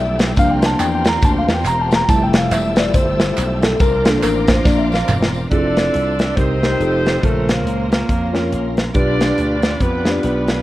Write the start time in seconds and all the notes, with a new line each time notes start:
Already playing: B1 F3 G3 A3 E4 G4 D5 E5 G5 A5 E6
0.19 snare, closed hi-hat, tambourine
0.36 C2 F3 A#3 C4 D4 F4 F#4 F5 A#5 C6, kick, closed hi-hat, tambourine
0.41 G4
0.51 G5
0.62 A5, snare, closed hi-hat, tambourine
0.80 E2 G5, clap, closed hi-hat, tambourine
0.95 G5
1.04 snare, closed hi-hat, tambourine
1.09 A#5
1.22 D2 F3 A#3 D4 A5, kick, closed hi-hat, tambourine
1.38 F5
1.48 E2, snare, closed hi-hat, tambourine
1.54 G5
1.64 E1 A#5, clap, closed hi-hat, tambourine
1.81 A5
1.91 snare, closed hi-hat, tambourine
1.95 A#5
2.08 F1 F3 G3 A3 E4 G4 A5 E6, kick, closed hi-hat, tambourine
2.23 G5
2.33 snare, closed hi-hat, tambourine
2.37 F5
2.51 E1 E5, clap, closed hi-hat, tambourine
2.76 D5, snare, closed hi-hat, tambourine
2.94 G1 C5, kick, closed hi-hat, tambourine
3.20 snare, closed hi-hat, tambourine
3.37 B1, clap, closed hi-hat, tambourine
3.63 A4, snare, closed hi-hat, tambourine
3.80 C2 F3 C4 D4 A4 A#4 F5 A#5 C6 D6, kick, closed hi-hat, tambourine
3.86 A#4
3.95 A#4
4.05 F3 A#3 D4, snare, closed hi-hat, tambourine
4.09 A4
4.23 A1 A#4, clap, closed hi-hat, tambourine
4.47 C5, kick, snare, closed hi-hat, tambourine
4.65 A#1 F3 A#3 D4 D5, kick, snare, tambourine
4.78 E5
4.92 F5, snare, tambourine
5.08 E1, clap, mid tom, tambourine
5.22 snare
5.34 tambourine
5.50 F1 F3 C4 D4 E4 F4 G#4 A4 D5 E5 A5 C6 E6, kick, closed hi-hat
5.57 A4
5.77 snare, closed hi-hat
5.94 C2, closed hi-hat
6.19 snare, closed hi-hat
6.36 C2 C3 G3 C4 D#4 G4 A#4 C5 G5 A#5 D#6, kick, closed hi-hat
6.63 C4 D#4 G4 A#4, snare, closed hi-hat
6.80 F1 G3 D#4 F4 G4 A4 F5 A5 D#6, closed hi-hat
7.06 snare, closed hi-hat
7.21 A#1 A#2 C#3 A3 A#3 C4 C#4 F4 A4 A#4 C5 F5 A#5 C6, kick, closed hi-hat
7.29 C#3
7.49 A#3 C#4 F4 A#4, snare, closed hi-hat
7.65 C#2, closed hi-hat
7.91 A#3 C#4 F4 A#4, snare, closed hi-hat
8.09 F2, kick, closed hi-hat
8.33 C#4 F4 A#4 C#5, snare, closed hi-hat
8.52 A#1, closed hi-hat
8.77 snare, closed hi-hat
8.94 B1 B2 G3 D4 F4 G4 A4 B4 D5 F5 G5 B5 D6, kick, closed hi-hat
9.02 B4
9.21 snare, closed hi-hat
9.38 D2, closed hi-hat
9.63 snare, closed hi-hat
9.80 F2 B3 D4 F4 B4, kick, closed hi-hat
10.05 D4 F4 G4 C5, snare, closed hi-hat
10.11 D5
10.23 B1 B3, closed hi-hat
10.48 snare, closed hi-hat